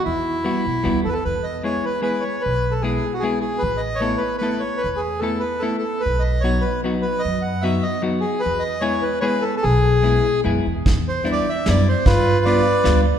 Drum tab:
HH |------|------|------|------|
SD |------|------|------|------|
BD |------|------|------|------|

HH |------|------|------|------|
SD |------|------|------|------|
BD |------|------|------|------|

HH |------|x-x-x-|x-x-x-|
SD |------|----o-|----o-|
BD |------|o-----|o-----|